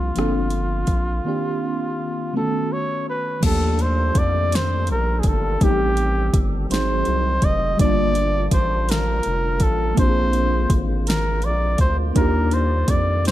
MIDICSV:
0, 0, Header, 1, 6, 480
1, 0, Start_track
1, 0, Tempo, 727273
1, 822, Time_signature, 6, 3, 24, 8
1, 8787, End_track
2, 0, Start_track
2, 0, Title_t, "Flugelhorn"
2, 0, Program_c, 0, 56
2, 0, Note_on_c, 0, 65, 70
2, 1549, Note_off_c, 0, 65, 0
2, 1563, Note_on_c, 0, 69, 79
2, 1798, Note_on_c, 0, 73, 80
2, 1808, Note_off_c, 0, 69, 0
2, 2030, Note_off_c, 0, 73, 0
2, 2042, Note_on_c, 0, 71, 73
2, 2256, Note_off_c, 0, 71, 0
2, 2276, Note_on_c, 0, 69, 92
2, 2519, Note_on_c, 0, 72, 88
2, 2529, Note_off_c, 0, 69, 0
2, 2761, Note_on_c, 0, 74, 100
2, 2770, Note_off_c, 0, 72, 0
2, 3003, Note_on_c, 0, 72, 101
2, 3013, Note_off_c, 0, 74, 0
2, 3233, Note_off_c, 0, 72, 0
2, 3244, Note_on_c, 0, 70, 93
2, 3431, Note_on_c, 0, 68, 65
2, 3441, Note_off_c, 0, 70, 0
2, 3480, Note_on_c, 0, 69, 90
2, 3490, Note_off_c, 0, 68, 0
2, 3718, Note_on_c, 0, 67, 97
2, 3728, Note_off_c, 0, 69, 0
2, 4250, Note_off_c, 0, 67, 0
2, 4435, Note_on_c, 0, 72, 103
2, 4915, Note_on_c, 0, 75, 101
2, 4925, Note_off_c, 0, 72, 0
2, 5148, Note_off_c, 0, 75, 0
2, 5153, Note_on_c, 0, 74, 116
2, 5601, Note_off_c, 0, 74, 0
2, 5634, Note_on_c, 0, 72, 96
2, 5876, Note_on_c, 0, 70, 109
2, 5886, Note_off_c, 0, 72, 0
2, 6354, Note_on_c, 0, 69, 94
2, 6364, Note_off_c, 0, 70, 0
2, 6588, Note_off_c, 0, 69, 0
2, 6595, Note_on_c, 0, 72, 109
2, 7102, Note_off_c, 0, 72, 0
2, 7311, Note_on_c, 0, 70, 98
2, 7555, Note_on_c, 0, 74, 95
2, 7565, Note_off_c, 0, 70, 0
2, 7788, Note_off_c, 0, 74, 0
2, 7793, Note_on_c, 0, 72, 87
2, 7899, Note_off_c, 0, 72, 0
2, 8031, Note_on_c, 0, 70, 90
2, 8274, Note_on_c, 0, 72, 83
2, 8284, Note_off_c, 0, 70, 0
2, 8517, Note_on_c, 0, 74, 92
2, 8527, Note_off_c, 0, 72, 0
2, 8750, Note_off_c, 0, 74, 0
2, 8759, Note_on_c, 0, 72, 101
2, 8787, Note_off_c, 0, 72, 0
2, 8787, End_track
3, 0, Start_track
3, 0, Title_t, "FM electric piano"
3, 0, Program_c, 1, 5
3, 0, Control_c, 1, 64, 127
3, 0, Note_on_c, 1, 53, 57
3, 0, Note_on_c, 1, 58, 49
3, 0, Note_on_c, 1, 60, 49
3, 0, Note_on_c, 1, 62, 48
3, 0, Note_on_c, 1, 67, 61
3, 90, Note_off_c, 1, 53, 0
3, 97, Note_off_c, 1, 58, 0
3, 98, Note_on_c, 1, 53, 61
3, 104, Note_off_c, 1, 60, 0
3, 104, Note_on_c, 1, 58, 55
3, 110, Control_c, 1, 64, 0
3, 111, Note_off_c, 1, 62, 0
3, 112, Note_on_c, 1, 60, 56
3, 114, Note_off_c, 1, 67, 0
3, 118, Note_on_c, 1, 62, 60
3, 126, Note_on_c, 1, 69, 65
3, 240, Control_c, 1, 64, 127
3, 819, Note_off_c, 1, 58, 0
3, 820, Note_off_c, 1, 53, 0
3, 821, Note_on_c, 1, 51, 61
3, 825, Note_off_c, 1, 60, 0
3, 827, Note_on_c, 1, 58, 56
3, 830, Note_off_c, 1, 62, 0
3, 831, Control_c, 1, 64, 0
3, 833, Note_on_c, 1, 60, 60
3, 834, Note_off_c, 1, 69, 0
3, 841, Note_on_c, 1, 62, 60
3, 846, Note_on_c, 1, 67, 70
3, 942, Control_c, 1, 64, 127
3, 1539, Note_on_c, 1, 50, 47
3, 1541, Note_off_c, 1, 51, 0
3, 1544, Note_off_c, 1, 58, 0
3, 1544, Note_on_c, 1, 57, 57
3, 1548, Note_off_c, 1, 60, 0
3, 1550, Control_c, 1, 64, 0
3, 1551, Note_off_c, 1, 62, 0
3, 1552, Note_on_c, 1, 59, 53
3, 1554, Note_off_c, 1, 67, 0
3, 1558, Note_on_c, 1, 61, 54
3, 1564, Note_on_c, 1, 66, 67
3, 1581, Note_on_c, 1, 51, 60
3, 1583, Note_off_c, 1, 50, 0
3, 1675, Control_c, 1, 64, 127
3, 2247, Note_on_c, 1, 53, 61
3, 2253, Note_off_c, 1, 57, 0
3, 2260, Note_on_c, 1, 57, 54
3, 2267, Note_off_c, 1, 59, 0
3, 2270, Note_off_c, 1, 61, 0
3, 2271, Control_c, 1, 64, 0
3, 2273, Note_off_c, 1, 66, 0
3, 2273, Note_on_c, 1, 58, 57
3, 2282, Note_off_c, 1, 51, 0
3, 2285, Note_on_c, 1, 62, 56
3, 2299, Note_on_c, 1, 67, 69
3, 2399, Control_c, 1, 64, 127
3, 3668, Note_off_c, 1, 53, 0
3, 3675, Note_off_c, 1, 57, 0
3, 3681, Note_off_c, 1, 58, 0
3, 3687, Note_off_c, 1, 62, 0
3, 3694, Note_off_c, 1, 67, 0
3, 3702, Note_on_c, 1, 55, 64
3, 3707, Note_on_c, 1, 57, 59
3, 3709, Control_c, 1, 64, 0
3, 3713, Note_on_c, 1, 58, 48
3, 3720, Note_on_c, 1, 63, 59
3, 3727, Note_on_c, 1, 67, 71
3, 3751, Note_off_c, 1, 58, 0
3, 3757, Note_on_c, 1, 60, 57
3, 3816, Control_c, 1, 64, 127
3, 4416, Note_off_c, 1, 60, 0
3, 4418, Note_on_c, 1, 54, 61
3, 4422, Note_off_c, 1, 55, 0
3, 4424, Note_off_c, 1, 57, 0
3, 4424, Note_on_c, 1, 60, 55
3, 4430, Control_c, 1, 64, 0
3, 4430, Note_on_c, 1, 66, 57
3, 4431, Note_off_c, 1, 63, 0
3, 4434, Note_off_c, 1, 67, 0
3, 4438, Note_on_c, 1, 63, 61
3, 4444, Note_on_c, 1, 68, 70
3, 4529, Control_c, 1, 64, 127
3, 5128, Note_on_c, 1, 55, 64
3, 5140, Note_off_c, 1, 54, 0
3, 5141, Note_on_c, 1, 58, 64
3, 5143, Note_off_c, 1, 60, 0
3, 5146, Note_off_c, 1, 66, 0
3, 5150, Note_off_c, 1, 63, 0
3, 5150, Control_c, 1, 64, 0
3, 5153, Note_off_c, 1, 68, 0
3, 5155, Note_on_c, 1, 62, 61
3, 5167, Note_on_c, 1, 65, 63
3, 5180, Note_on_c, 1, 81, 74
3, 5259, Control_c, 1, 64, 127
3, 6549, Note_off_c, 1, 55, 0
3, 6555, Note_off_c, 1, 58, 0
3, 6562, Note_off_c, 1, 62, 0
3, 6566, Note_on_c, 1, 58, 64
3, 6568, Note_off_c, 1, 65, 0
3, 6575, Note_off_c, 1, 81, 0
3, 6580, Note_on_c, 1, 60, 59
3, 6590, Control_c, 1, 64, 0
3, 6591, Note_on_c, 1, 62, 56
3, 6605, Note_on_c, 1, 65, 59
3, 6619, Note_on_c, 1, 67, 58
3, 6643, Note_off_c, 1, 67, 0
3, 6662, Note_on_c, 1, 68, 71
3, 6717, Control_c, 1, 64, 127
3, 7988, Note_off_c, 1, 58, 0
3, 7995, Note_off_c, 1, 60, 0
3, 8000, Note_off_c, 1, 62, 0
3, 8006, Note_on_c, 1, 58, 65
3, 8007, Note_off_c, 1, 65, 0
3, 8017, Note_on_c, 1, 62, 60
3, 8030, Control_c, 1, 64, 0
3, 8031, Note_on_c, 1, 63, 61
3, 8036, Note_off_c, 1, 68, 0
3, 8044, Note_on_c, 1, 65, 60
3, 8058, Note_on_c, 1, 67, 72
3, 8164, Control_c, 1, 64, 127
3, 8787, Note_off_c, 1, 58, 0
3, 8787, Note_off_c, 1, 62, 0
3, 8787, Note_off_c, 1, 63, 0
3, 8787, Note_off_c, 1, 65, 0
3, 8787, Note_off_c, 1, 67, 0
3, 8787, End_track
4, 0, Start_track
4, 0, Title_t, "Tonewheel organ"
4, 0, Program_c, 2, 16
4, 2264, Note_on_c, 2, 62, 56
4, 2264, Note_on_c, 2, 69, 54
4, 2265, Note_on_c, 2, 51, 59
4, 2265, Note_on_c, 2, 65, 68
4, 2267, Note_on_c, 2, 55, 56
4, 3689, Note_off_c, 2, 62, 0
4, 3689, Note_off_c, 2, 65, 0
4, 3702, Note_on_c, 2, 67, 68
4, 3703, Note_on_c, 2, 60, 56
4, 4401, Note_off_c, 2, 69, 0
4, 4403, Note_off_c, 2, 55, 0
4, 4415, Note_off_c, 2, 60, 0
4, 4415, Note_off_c, 2, 67, 0
4, 4423, Note_on_c, 2, 63, 59
4, 4423, Note_on_c, 2, 66, 74
4, 4426, Note_on_c, 2, 60, 57
4, 4427, Note_on_c, 2, 56, 61
4, 5117, Note_off_c, 2, 51, 0
4, 5135, Note_off_c, 2, 63, 0
4, 5136, Note_off_c, 2, 66, 0
4, 5137, Note_off_c, 2, 56, 0
4, 5137, Note_off_c, 2, 60, 0
4, 5144, Note_on_c, 2, 50, 64
4, 5146, Note_on_c, 2, 53, 58
4, 5146, Note_on_c, 2, 58, 60
4, 5147, Note_on_c, 2, 55, 61
4, 5149, Note_on_c, 2, 65, 72
4, 6569, Note_off_c, 2, 50, 0
4, 6570, Note_off_c, 2, 53, 0
4, 6570, Note_off_c, 2, 55, 0
4, 6584, Note_on_c, 2, 56, 61
4, 6585, Note_on_c, 2, 50, 65
4, 6585, Note_on_c, 2, 53, 56
4, 7999, Note_off_c, 2, 65, 0
4, 8009, Note_off_c, 2, 50, 0
4, 8009, Note_off_c, 2, 53, 0
4, 8009, Note_off_c, 2, 56, 0
4, 8024, Note_on_c, 2, 51, 66
4, 8025, Note_on_c, 2, 74, 54
4, 8026, Note_on_c, 2, 55, 56
4, 8028, Note_on_c, 2, 67, 70
4, 8787, Note_off_c, 2, 51, 0
4, 8787, Note_off_c, 2, 55, 0
4, 8787, Note_off_c, 2, 58, 0
4, 8787, Note_off_c, 2, 67, 0
4, 8787, Note_off_c, 2, 74, 0
4, 8787, End_track
5, 0, Start_track
5, 0, Title_t, "Analog synth bass"
5, 0, Program_c, 3, 38
5, 0, Note_on_c, 3, 36, 82
5, 79, Note_off_c, 3, 36, 0
5, 111, Note_on_c, 3, 31, 94
5, 560, Note_off_c, 3, 31, 0
5, 581, Note_on_c, 3, 34, 78
5, 798, Note_off_c, 3, 34, 0
5, 2267, Note_on_c, 3, 39, 104
5, 2718, Note_off_c, 3, 39, 0
5, 2745, Note_on_c, 3, 41, 87
5, 3232, Note_on_c, 3, 34, 105
5, 3242, Note_off_c, 3, 41, 0
5, 3444, Note_off_c, 3, 34, 0
5, 3464, Note_on_c, 3, 31, 89
5, 3679, Note_off_c, 3, 31, 0
5, 3709, Note_on_c, 3, 33, 116
5, 4159, Note_off_c, 3, 33, 0
5, 4185, Note_on_c, 3, 31, 92
5, 4400, Note_off_c, 3, 31, 0
5, 4430, Note_on_c, 3, 32, 104
5, 4643, Note_off_c, 3, 32, 0
5, 4671, Note_on_c, 3, 36, 92
5, 4883, Note_off_c, 3, 36, 0
5, 4903, Note_on_c, 3, 29, 88
5, 5118, Note_off_c, 3, 29, 0
5, 5148, Note_on_c, 3, 31, 114
5, 5599, Note_off_c, 3, 31, 0
5, 5625, Note_on_c, 3, 33, 91
5, 6077, Note_off_c, 3, 33, 0
5, 6114, Note_on_c, 3, 29, 92
5, 6343, Note_on_c, 3, 33, 88
5, 6352, Note_off_c, 3, 29, 0
5, 6558, Note_off_c, 3, 33, 0
5, 6588, Note_on_c, 3, 34, 112
5, 7039, Note_off_c, 3, 34, 0
5, 7065, Note_on_c, 3, 32, 92
5, 7552, Note_on_c, 3, 34, 97
5, 7562, Note_off_c, 3, 32, 0
5, 7763, Note_off_c, 3, 34, 0
5, 7785, Note_on_c, 3, 38, 83
5, 8000, Note_off_c, 3, 38, 0
5, 8028, Note_on_c, 3, 39, 108
5, 8479, Note_off_c, 3, 39, 0
5, 8505, Note_on_c, 3, 41, 89
5, 8787, Note_off_c, 3, 41, 0
5, 8787, End_track
6, 0, Start_track
6, 0, Title_t, "Drums"
6, 103, Note_on_c, 9, 42, 55
6, 122, Note_on_c, 9, 37, 95
6, 169, Note_off_c, 9, 42, 0
6, 188, Note_off_c, 9, 37, 0
6, 333, Note_on_c, 9, 42, 47
6, 399, Note_off_c, 9, 42, 0
6, 574, Note_on_c, 9, 42, 56
6, 578, Note_on_c, 9, 36, 65
6, 640, Note_off_c, 9, 42, 0
6, 644, Note_off_c, 9, 36, 0
6, 2262, Note_on_c, 9, 49, 99
6, 2263, Note_on_c, 9, 36, 105
6, 2263, Note_on_c, 9, 42, 78
6, 2328, Note_off_c, 9, 49, 0
6, 2329, Note_off_c, 9, 36, 0
6, 2329, Note_off_c, 9, 42, 0
6, 2501, Note_on_c, 9, 42, 53
6, 2567, Note_off_c, 9, 42, 0
6, 2740, Note_on_c, 9, 36, 91
6, 2740, Note_on_c, 9, 42, 77
6, 2806, Note_off_c, 9, 36, 0
6, 2806, Note_off_c, 9, 42, 0
6, 2986, Note_on_c, 9, 42, 69
6, 3005, Note_on_c, 9, 38, 110
6, 3052, Note_off_c, 9, 42, 0
6, 3071, Note_off_c, 9, 38, 0
6, 3214, Note_on_c, 9, 42, 52
6, 3280, Note_off_c, 9, 42, 0
6, 3454, Note_on_c, 9, 42, 65
6, 3459, Note_on_c, 9, 36, 85
6, 3520, Note_off_c, 9, 42, 0
6, 3525, Note_off_c, 9, 36, 0
6, 3703, Note_on_c, 9, 42, 79
6, 3704, Note_on_c, 9, 36, 110
6, 3769, Note_off_c, 9, 42, 0
6, 3770, Note_off_c, 9, 36, 0
6, 3940, Note_on_c, 9, 42, 51
6, 4006, Note_off_c, 9, 42, 0
6, 4181, Note_on_c, 9, 36, 102
6, 4182, Note_on_c, 9, 42, 81
6, 4247, Note_off_c, 9, 36, 0
6, 4248, Note_off_c, 9, 42, 0
6, 4428, Note_on_c, 9, 42, 70
6, 4447, Note_on_c, 9, 38, 110
6, 4494, Note_off_c, 9, 42, 0
6, 4513, Note_off_c, 9, 38, 0
6, 4655, Note_on_c, 9, 42, 55
6, 4721, Note_off_c, 9, 42, 0
6, 4896, Note_on_c, 9, 42, 67
6, 4899, Note_on_c, 9, 36, 87
6, 4962, Note_off_c, 9, 42, 0
6, 4965, Note_off_c, 9, 36, 0
6, 5144, Note_on_c, 9, 36, 110
6, 5144, Note_on_c, 9, 42, 81
6, 5210, Note_off_c, 9, 36, 0
6, 5210, Note_off_c, 9, 42, 0
6, 5380, Note_on_c, 9, 42, 53
6, 5446, Note_off_c, 9, 42, 0
6, 5619, Note_on_c, 9, 42, 85
6, 5620, Note_on_c, 9, 36, 96
6, 5685, Note_off_c, 9, 42, 0
6, 5686, Note_off_c, 9, 36, 0
6, 5865, Note_on_c, 9, 42, 69
6, 5884, Note_on_c, 9, 38, 122
6, 5931, Note_off_c, 9, 42, 0
6, 5950, Note_off_c, 9, 38, 0
6, 6093, Note_on_c, 9, 42, 53
6, 6159, Note_off_c, 9, 42, 0
6, 6334, Note_on_c, 9, 42, 68
6, 6339, Note_on_c, 9, 36, 80
6, 6400, Note_off_c, 9, 42, 0
6, 6405, Note_off_c, 9, 36, 0
6, 6583, Note_on_c, 9, 36, 113
6, 6583, Note_on_c, 9, 42, 80
6, 6649, Note_off_c, 9, 36, 0
6, 6649, Note_off_c, 9, 42, 0
6, 6819, Note_on_c, 9, 42, 51
6, 6885, Note_off_c, 9, 42, 0
6, 7060, Note_on_c, 9, 36, 99
6, 7061, Note_on_c, 9, 42, 76
6, 7126, Note_off_c, 9, 36, 0
6, 7127, Note_off_c, 9, 42, 0
6, 7306, Note_on_c, 9, 42, 66
6, 7325, Note_on_c, 9, 38, 121
6, 7372, Note_off_c, 9, 42, 0
6, 7391, Note_off_c, 9, 38, 0
6, 7536, Note_on_c, 9, 42, 54
6, 7602, Note_off_c, 9, 42, 0
6, 7776, Note_on_c, 9, 42, 68
6, 7779, Note_on_c, 9, 36, 81
6, 7842, Note_off_c, 9, 42, 0
6, 7845, Note_off_c, 9, 36, 0
6, 8023, Note_on_c, 9, 42, 80
6, 8024, Note_on_c, 9, 36, 106
6, 8089, Note_off_c, 9, 42, 0
6, 8090, Note_off_c, 9, 36, 0
6, 8259, Note_on_c, 9, 42, 53
6, 8325, Note_off_c, 9, 42, 0
6, 8500, Note_on_c, 9, 42, 83
6, 8501, Note_on_c, 9, 36, 97
6, 8566, Note_off_c, 9, 42, 0
6, 8567, Note_off_c, 9, 36, 0
6, 8746, Note_on_c, 9, 42, 67
6, 8765, Note_on_c, 9, 38, 113
6, 8787, Note_off_c, 9, 38, 0
6, 8787, Note_off_c, 9, 42, 0
6, 8787, End_track
0, 0, End_of_file